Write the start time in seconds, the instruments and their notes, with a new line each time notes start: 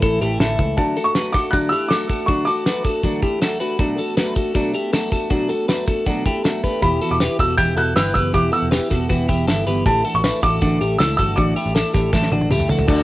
0.02 picked electric bass A1, steel-string acoustic guitar E3 A3 E4 A4, clean electric guitar E4 A4, kick, closed hi-hat
0.21 picked electric bass A1, steel-string acoustic guitar E3 A3 E4 A4, clean electric guitar E4 G4, closed hi-hat
0.40 picked electric bass A1, steel-string acoustic guitar A2 D3 E3 A3 E4 A4, clean electric guitar E4 A4, snare, closed hi-hat
0.59 picked electric bass C#2, steel-string acoustic guitar E3 A3 E4 A4, kick, closed hi-hat
0.77 steel-string acoustic guitar D3 F#3 A3 D4 A4, clean electric guitar D4 F#4, upright piano A5, kick, closed hi-hat
0.96 steel-string acoustic guitar A3 D4 A4, clean electric guitar F#4 A4, closed hi-hat, tambourine
1.04 upright piano C#6
1.15 steel-string acoustic guitar F#3 A3 D4 A4, clean electric guitar F#4 B4, snare, closed hi-hat, tambourine
1.32 steel-string acoustic guitar D4 A4, clean electric guitar F#4 A4, upright piano D6, kick, snare, closed hi-hat, tambourine
1.36 steel-string acoustic guitar A3
1.51 steel-string acoustic guitar D3 F#3 A3 D4 A4, clean electric guitar D4 F#4, upright piano F#6, kick, closed hi-hat, tambourine
1.69 clean electric guitar E4 G4, steel-string acoustic guitar A4, upright piano E6, closed hi-hat, tambourine
1.73 steel-string acoustic guitar A3 D4
1.88 steel-string acoustic guitar F#3 A3 D4, clean electric guitar F#4 A4, upright piano D6, snare, closed hi-hat, tambourine
1.93 steel-string acoustic guitar A4
2.09 steel-string acoustic guitar A3 D4 A4, clean electric guitar F#4 A4, kick, closed hi-hat, tambourine
2.26 steel-string acoustic guitar D3 F#3 A3 D4 A4, clean electric guitar D4 F#4, upright piano C#6, kick, closed hi-hat, tambourine
2.45 steel-string acoustic guitar A3 D4 A4, clean electric guitar F#4 A4, upright piano D6, closed hi-hat, tambourine
2.65 steel-string acoustic guitar F#3 A3 D4 A4, clean electric guitar F#4 B4, snare, closed hi-hat, tambourine
2.84 steel-string acoustic guitar A3 D4 A4, clean electric guitar F#4 A4, kick, closed hi-hat, tambourine
3.03 steel-string acoustic guitar D3 F#3 A3 D4 A4, clean electric guitar D4 F#4, kick, closed hi-hat, tambourine
3.22 steel-string acoustic guitar A3 D4 A4, clean electric guitar E4 G4, kick, closed hi-hat
3.40 steel-string acoustic guitar F#3 A3 D4 A4, clean electric guitar F#4 A4, snare, closed hi-hat, tambourine
3.60 steel-string acoustic guitar A3 D4 A4, clean electric guitar F#4 B4, closed hi-hat, tambourine
3.78 steel-string acoustic guitar B2 F#3 A3 D4 A4, clean electric guitar D4 F#4, kick, closed hi-hat
3.97 steel-string acoustic guitar A3 D4 A4, clean electric guitar F#4 A4, closed hi-hat, tambourine
4.16 steel-string acoustic guitar F#3 A3 D4 A4, clean electric guitar F#4 B4, snare, closed hi-hat, tambourine
4.35 steel-string acoustic guitar A3 D4 A4, clean electric guitar F#4 A4, kick, closed hi-hat, tambourine
4.54 steel-string acoustic guitar B2 F#3 A3 D4 A4, clean electric guitar D4 F#4, kick, closed hi-hat, tambourine
4.73 steel-string acoustic guitar A3 D4 A4, clean electric guitar E4 G4, closed hi-hat, tambourine
4.93 steel-string acoustic guitar F#3 A3 D4 A4, clean electric guitar F#4 A4, snare, closed hi-hat, tambourine
5.12 steel-string acoustic guitar A3 D4 A4, clean electric guitar F#4 A4, kick, closed hi-hat, tambourine
5.30 steel-string acoustic guitar B2 F#3 A3 D4 A4, clean electric guitar D4 F#4, kick, closed hi-hat, tambourine
5.49 steel-string acoustic guitar A3 D4 A4, clean electric guitar F#4 A4, closed hi-hat, tambourine
5.68 steel-string acoustic guitar F#3 A3 D4 A4, clean electric guitar F#4 B4, snare, closed hi-hat, tambourine
5.86 steel-string acoustic guitar A3 D4 A4, clean electric guitar F#4 A4, kick, closed hi-hat, tambourine
6.06 steel-string acoustic guitar B2 F#3 A3 D4 A4, clean electric guitar D4 F#4, kick, closed hi-hat, tambourine
6.25 steel-string acoustic guitar A3 D4 A4, clean electric guitar E4 G4, kick, closed hi-hat, tambourine
6.44 steel-string acoustic guitar F#3 A3 D4 A4, clean electric guitar F#4 A4, snare, closed hi-hat, tambourine
6.63 steel-string acoustic guitar A3 D4 A4, clean electric guitar G4 B4, kick, closed hi-hat, tambourine
6.82 picked electric bass E1, steel-string acoustic guitar E3 B3 E4 G4, clean electric guitar E4 G4, upright piano B5, kick, closed hi-hat
7.01 steel-string acoustic guitar B3 E4 G4, clean electric guitar F#4 A4, closed hi-hat, tambourine
7.11 picked electric bass E1, upright piano D6
7.20 steel-string acoustic guitar E3 B3 E4 G4, clean electric guitar G4 B4, snare, closed hi-hat, tambourine
7.39 picked electric bass E1, steel-string acoustic guitar B3 E4 G4, clean electric guitar F#4 A4, upright piano E6, kick, closed hi-hat, tambourine
7.57 picked electric bass E1, steel-string acoustic guitar E3 B3 E4 G4, clean electric guitar E4 G4, upright piano G6, kick, closed hi-hat, tambourine
7.76 picked electric bass E1, steel-string acoustic guitar B3 E4 G4, clean electric guitar F#4 A4, upright piano F#6, closed hi-hat, tambourine
7.96 picked electric bass G1, steel-string acoustic guitar E3 B3 E4 G4, clean electric guitar G4 B4, upright piano E6, snare, closed hi-hat, tambourine
8.14 picked electric bass F#1, steel-string acoustic guitar B3 G4, clean electric guitar G4 B4, upright piano E6, kick, closed hi-hat, tambourine
8.34 picked electric bass E1, steel-string acoustic guitar E3 B3 E4 G4, clean electric guitar E4 G4, upright piano D6, kick, closed hi-hat
8.52 steel-string acoustic guitar B3 E4 G4, clean electric guitar F#4 A4, upright piano E6, closed hi-hat, tambourine
8.62 picked electric bass E1
8.71 steel-string acoustic guitar E3 B3 E4 G4, clean electric guitar G4 B4, snare, closed hi-hat, tambourine
8.90 picked electric bass E1, steel-string acoustic guitar B3 E4 G4, clean electric guitar F#4 A4, kick, snare, closed hi-hat, tambourine
9.09 picked electric bass E1, steel-string acoustic guitar E3 B3 E4 G4, clean electric guitar B3 F#4, kick, closed hi-hat, tambourine
9.28 picked electric bass E1, steel-string acoustic guitar B3 E4 G4, clean electric guitar E4 G4, kick, closed hi-hat, tambourine
9.47 picked electric bass G1, steel-string acoustic guitar E3 B3 E4 G4, clean electric guitar E4 A4, snare, closed hi-hat, tambourine
9.66 picked electric bass G1, steel-string acoustic guitar B3 E4 G4, clean electric guitar G4 B4, closed hi-hat, tambourine
9.86 picked electric bass A1, steel-string acoustic guitar A2 D3 E3 A3 D4 A4, clean electric guitar E4 G4, upright piano A5, kick, closed hi-hat
10.04 steel-string acoustic guitar E3 A3 D4, clean electric guitar F#4 A4, closed hi-hat, tambourine
10.15 picked electric bass A1, upright piano C#6
10.23 steel-string acoustic guitar E3 A3 D4 A4, clean electric guitar E4 B4, snare, closed hi-hat, tambourine
10.41 picked electric bass A1, steel-string acoustic guitar E3 A3 D4 A4, clean electric guitar F#4 A4, upright piano D6, kick, closed hi-hat, tambourine
10.61 picked electric bass A1, steel-string acoustic guitar A2 D3 E3 A3 D4 A4, clean electric guitar D4 F#4, kick, closed hi-hat, tambourine
10.80 picked electric bass A1, steel-string acoustic guitar E3 A3 D4 A4, clean electric guitar E4 G4, closed hi-hat, tambourine
10.98 picked electric bass C#2, steel-string acoustic guitar E3 A3 A4, clean electric guitar E4 A4, upright piano E6, snare, closed hi-hat, tambourine
11.17 picked electric bass G1, steel-string acoustic guitar E3 A3 D4 A4, clean electric guitar F#4 A4, upright piano E6, kick, closed hi-hat, tambourine
11.36 picked electric bass A1, steel-string acoustic guitar A2 D3 E3 A3 D4 A4, clean electric guitar D4 F#4, upright piano D6, kick, closed hi-hat
11.56 steel-string acoustic guitar E3 A3 D4 A4, clean electric guitar E4 G4, closed hi-hat, tambourine
11.66 picked electric bass A1
11.75 steel-string acoustic guitar E3 A3 D4 A4, clean electric guitar E4 A4, snare, closed hi-hat, tambourine
11.94 picked electric bass A1, steel-string acoustic guitar E3 A3 D4 A4, clean electric guitar E4 G4, kick, snare, closed hi-hat, tambourine
12.13 picked electric bass A1, steel-string acoustic guitar A2 D3 E3 A3 D4 A4, clean electric guitar E4 A4, kick, snare, tambourine
12.23 snare
12.32 picked electric bass A1, steel-string acoustic guitar E3 A3 D4 A4, clean electric guitar D4 F#4, high tom
12.41 high tom
12.49 picked electric bass C#2, steel-string acoustic guitar E3 A3 D4 A4, clean electric guitar E4 G4, mid tom, tambourine
12.60 mid tom
12.69 picked electric bass C#2, steel-string acoustic guitar E3 A3 D4 A4, clean electric guitar F#4 A4, floor tom, tambourine
12.79 floor tom
12.87 picked electric bass D2, steel-string acoustic guitar D3 F#3 A3 D4 F#4, upright piano D4, clean electric guitar F#4 A4, kick, crash, tambourine